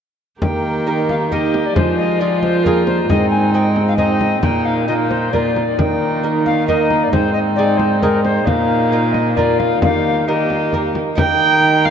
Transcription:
0.40 D#3 A#3 G4 G5, frame drum
0.87 D#4 G4 A#4
1.09 F5, frame drum
1.31 A#3 D#4 G4 A#4 D#5, frame drum
1.54 frame drum
1.66 D5
1.76 F3 G#3 F4 C5, frame drum
1.98 D#5
2.19 C4 F4 G#4 D5
2.42 C5, frame drum
2.64 A#3 C4 F4 G#4 A#4, frame drum
2.87 C5, frame drum
3.08 G#2 C4 D#4 D#5, frame drum
3.30 G#5
3.53 C4 D#4 G#4 G5 G#5
3.76 frame drum
3.87 F5
3.97 C4 D#4 G#4 D#5, frame drum
4.21 frame drum
4.41 A#2 A#3 D#4 G5, frame drum
4.65 F5
4.88 A#3 D#4 F4 D#5
5.10 C5, frame drum
5.32 A#3 F4 A#4 D5, frame drum
5.56 frame drum
5.78 D#3 A#3 D#4 G5, frame drum
6.23 A#3 D#4 A#4
6.46 F5, frame drum
6.67 A#3 D#4 A#4 D#5, frame drum
6.91 frame drum
7.03 D5
7.12 G#2 C4 D#4 C5, frame drum
7.33 D#5
7.56 C4 D#4 G#4 D5
7.78 C5, frame drum
8.01 C4 D#4 G#4 A#4, frame drum
8.24 C5, frame drum
8.46 A#2 A#3 D#4 F5, frame drum
8.92 A#3 D#4 F4
9.12 D#5, frame drum
9.35 A#3 F4 A#4 D5, frame drum
9.59 F5, frame drum
9.81 D#3 A#3 G4 F5, frame drum
10.27 A#3 G4 A#4 D#5
10.50 frame drum
10.73 A#3 G4 A#4, frame drum
10.95 frame drum
11.15 D#3 D#4 G4 A#4 G5, frame drum
11.85 F5, frame drum

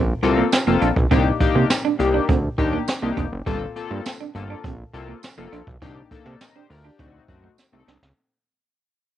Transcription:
Already playing: A#1
0.22 C2 A#3 C4 F4 A4, muted clean electric guitar stroke, closed hi-hat
0.38 A#3
0.52 muted clean electric guitar stroke, snare, closed hi-hat, tambourine
0.67 F1 A#3 C4 F4 A4, closed hi-hat
0.81 A#1 D4, closed hi-hat
0.96 B1, kick
1.11 C2 A#3 C4 D4 D#4 G4, kick, closed hi-hat
1.40 A#3 D4 D#4 G4, muted clean electric guitar stroke, kick, closed hi-hat
1.55 C3 A#3
1.70 snare, closed hi-hat, tambourine
1.85 D4
1.99 C2 A#3 D4 D#4 G4, muted clean electric guitar stroke, closed hi-hat
2.14 D4
2.29 D2 C4, kick, closed hi-hat
2.58 D#2 A#3 D4 D#4 G4, muted clean electric guitar stroke, kick, closed hi-hat
2.73 A#3
2.88 muted clean electric guitar stroke, snare, closed hi-hat, tambourine
3.02 C2 A#3 D4 D#4 G4
3.17 F1 D4, kick, closed hi-hat
3.32 F#1
3.46 G1 G3 A#3 C4 F4 A4, kick, closed hi-hat
3.76 A#3 C4 F4 A4, muted clean electric guitar stroke, closed hi-hat
3.91 G2 A#3
4.06 snare, closed hi-hat, tambourine
4.20 D4
4.35 G1 A#3 C4 F4 A4, muted clean electric guitar stroke, closed hi-hat
4.50 D4
4.64 A#1 C4, kick, closed hi-hat
4.94 C2 A#3 C4 F4 A4, muted clean electric guitar stroke, closed hi-hat
5.08 A#3
5.23 muted clean electric guitar stroke, snare, closed hi-hat, tambourine
5.37 F1 A#3 C4 F4 A4
5.52 A#1 D4, closed hi-hat
5.67 B1, kick
5.82 C2 A#3 C4 D4 D#4 G4, kick, closed hi-hat
6.11 A#3 D4 D#4 A4, muted clean electric guitar stroke, kick, closed hi-hat
6.26 C3 A#3
6.41 A#4 D#5, snare, closed hi-hat, tambourine
6.55 D4 G4 C5
6.70 D2 F4 A#4, muted clean electric guitar stroke, open hi-hat
6.85 D4 G4
6.99 D2 A3 C4 D#4 F#4, kick, closed hi-hat
7.29 F#2 A3 C4 D#4 F#4, muted clean electric guitar stroke, kick, closed hi-hat
7.44 A3
7.58 muted clean electric guitar stroke, snare, tambourine
7.72 C2 A3 C4 D#4 A4
7.88 C2 D4, snare
8.02 C#2, snare

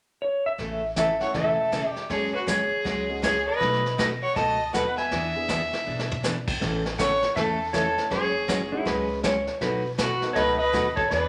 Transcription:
0.22 C#5
0.46 E5
0.58 A1 C#3 E3 A3 C#4 A4, brush sweep, kick, snare
0.96 C#3 E3 A3 C#4 A4 E5, kick, snare, hi-hat pedal
1.20 A3 C#4 E4 A4 C#5 F#5, snare
1.34 E1 C#3 E3 A3 C#4 A4 E5, brush sweep, kick, snare
1.72 C#3 E3 A3 C#4 A4, kick, snare, hi-hat pedal
1.88 G4
1.92 D5
1.96 snare
2.09 F#1 F#3 G#3 C#4 G#4 C#5, brush sweep, kick, snare
2.34 F#4 B4
2.47 F#3 G#3 C#4 G#4 C#5, kick, snare, hi-hat pedal
2.85 C#2 F#3 G#3 C#4 G#4 C#5, brush sweep, kick, snare
3.09 G#3 C#4 F#4 G#4
3.22 F#3 G#3 C#4 G#4 C#5, kick, snare, hi-hat pedal
3.48 B4 D#5
3.60 B1 B2 F#3 A3 D#4 F#4, brush sweep, kick, snare
3.74 snare
3.86 snare
3.98 B2 F#3 A3 D#4 F#4 B4 D#5, kick, snare, hi-hat pedal
4.23 C#5 F#5
4.35 C#2 B2 F#3 A3 D#4 F#4 D#5 A5, brush sweep, kick, snare
4.73 D#2 B2 F#3 A3 B3 D#4 F#4 A4 B4 F#5, kick, snare, hi-hat pedal
4.98 E5 G#5, snare
5.11 E2 E3 B3 D4 G#4, brush sweep, kick, snare
5.35 B3 D4 E4 G#4
5.48 E3 B3 D4 G#4, kick, snare, hi-hat pedal
5.73 snare
5.86 B1 E3 B3 D4 G#4
5.99 snare
6.11 floor tom
6.23 E3 B3 D4 G#4, snare, hi-hat pedal
6.48 kick, crash
6.60 A1 C#3 E3 A3 C#4 A4, brush sweep, kick, snare
6.86 snare
6.98 C#3 E3 A3 C#4 A4 C#5 F#5, kick, snare, hi-hat pedal
7.23 snare
7.36 E2 C#3 E3 A3 C#4 A4 E5, brush sweep, kick, snare
7.73 C#3 E3 A3 C#4 E4 A4 C#5, kick, snare, hi-hat pedal
7.98 snare
8.10 F#1 F#3 G#3 C#4 G#4 C#5, brush sweep, kick, snare
8.48 F#3 G#3 C#4 G#4 C#5, kick, snare, hi-hat pedal
8.72 G#3 C#4 E4 F#4 G#4
8.85 C#2 F#3 G#3 C#4 G#4 B4 C#5, brush sweep, kick, snare
9.23 F#3 G#3 C#4 G#4 C#5, kick, snare, hi-hat pedal
9.47 snare
9.61 B1 B2 F#3 A3 D#4 F#4 B4, brush sweep, kick, snare
9.98 B2 F#3 A3 D#4 F#4 B4, kick, snare, hi-hat pedal
10.22 B3 D#4 F#4 A4, snare
10.33 C#2 B2 F#3 A3 D#4 F#4 A4 B4 C#5 D#5, brush sweep, kick, snare
10.58 B4 D#5
10.73 D#2 B2 F#3 A3 D#4 F#4, kick, snare, hi-hat pedal
10.96 A4 C#5, kick
11.09 E2 E3 B3 D4 G#4 B4 D5, brush sweep, kick, snare

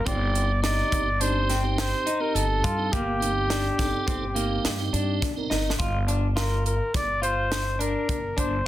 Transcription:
0.05 G1 C4 D#4 G4 D5, kick, closed hi-hat
0.35 closed hi-hat
0.62 C4 D#4 G4 D5, snare, closed hi-hat
0.92 G1, kick, closed hi-hat
1.20 C4 D4 D#4 G4 C5, closed hi-hat
1.49 C4, snare, closed hi-hat
1.63 C4 D#4 G4
1.78 C5, snare, closed hi-hat
2.06 D#4, closed hi-hat
2.20 C4 D#4 G4 A#4
2.35 G1 A4, closed hi-hat
2.64 G2 F4, kick, closed hi-hat
2.77 C4 D#4 G4
2.92 G1 A#3 G4, kick, closed hi-hat
3.20 C4 D#4 G4, closed hi-hat
3.50 D4, snare, closed hi-hat
3.78 G1 C4 D#4 A4, kick, snare, closed hi-hat
4.07 G1 C4, kick, closed hi-hat
4.35 A#3 C4 D#4 G4, closed hi-hat
4.65 G2, snare, closed hi-hat
4.78 C4 D#4 G4
4.93 G2 D4, closed hi-hat
5.22 G1, kick, snare, closed hi-hat
5.36 C4 D#4 A#4
5.50 G1 D#4, snare
5.70 snare
5.79 G1 F4, kick, closed hi-hat
6.07 D4, closed hi-hat
6.36 F4 A#4, snare, closed hi-hat
6.66 A#4, closed hi-hat
6.94 G1 D5, kick, snare, closed hi-hat
7.22 F4 C5, closed hi-hat
7.52 snare, closed hi-hat
7.79 D4 A#4, closed hi-hat
8.09 G1, kick, closed hi-hat
8.37 G1 D4 C5, kick, closed hi-hat

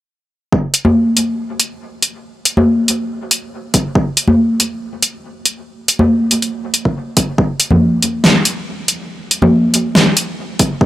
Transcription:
0.52 kick
0.74 closed hi-hat
0.85 high conga
1.17 closed hi-hat
1.60 closed hi-hat
2.02 closed hi-hat
2.45 closed hi-hat
2.57 high conga
2.88 closed hi-hat
3.31 closed hi-hat
3.74 kick, closed hi-hat
3.95 kick
4.17 closed hi-hat
4.28 high conga
4.60 closed hi-hat
5.02 closed hi-hat
5.45 closed hi-hat
5.88 closed hi-hat
5.99 high conga
6.31 closed hi-hat
6.42 closed hi-hat
6.74 closed hi-hat
6.85 kick
7.17 kick, closed hi-hat
7.38 kick
7.60 closed hi-hat
7.71 high conga, low conga
8.02 closed hi-hat
8.24 snare
8.45 closed hi-hat
8.88 closed hi-hat
9.31 closed hi-hat
9.42 high conga, low conga
9.74 closed hi-hat
9.95 snare
10.17 closed hi-hat
10.59 kick, closed hi-hat
10.81 kick

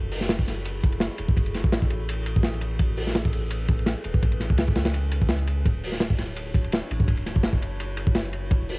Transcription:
Already playing: F#1 E4 F#4 G#4 A4
0.12 open hi-hat
0.21 snare
0.29 snare, ride
0.39 kick
0.47 snare, ride
0.65 ride
0.84 kick, ride
0.92 ride
1.00 snare, ride
1.18 E1, ride
1.29 kick
1.37 F#1, kick, ride
1.46 ride
1.54 snare, ride
1.64 A1, kick
1.72 snare, ride
1.82 kick
1.90 ride
2.09 ride
2.26 ride
2.36 kick
2.43 snare, ride
2.53 ride
2.61 ride
2.79 A1 C#4 B4, kick, ride
2.97 open hi-hat
3.07 snare
3.15 snare, ride
3.25 kick
3.33 ride
3.50 ride
3.68 kick, ride
3.79 ride
3.86 snare, ride
4.04 E1, ride
4.14 kick
4.22 A1, kick, ride
4.32 ride
4.40 snare, ride
4.50 C#2, kick
4.58 snare, ride
4.68 kick
4.75 snare, ride
4.85 snare, ride
4.94 ride
5.11 ride
5.22 kick
5.29 snare, ride
5.39 ride
5.47 ride
5.65 D1 D4 E4 F#4 C#5, kick, ride
5.84 open hi-hat
5.92 snare
6.00 snare, ride
6.10 kick
6.18 snare, ride
6.36 ride
6.54 kick, ride
6.64 ride
6.72 snare, ride
6.90 A1, ride
7.00 kick
7.08 D1, kick, ride
7.17 ride
7.26 snare, ride
7.36 F#1, kick
7.43 snare, ride
7.53 kick
7.62 ride
7.80 ride
7.97 ride
8.07 kick
8.15 snare, ride
8.25 ride
8.33 ride
8.51 E1 A4 D5, kick, ride
8.69 open hi-hat

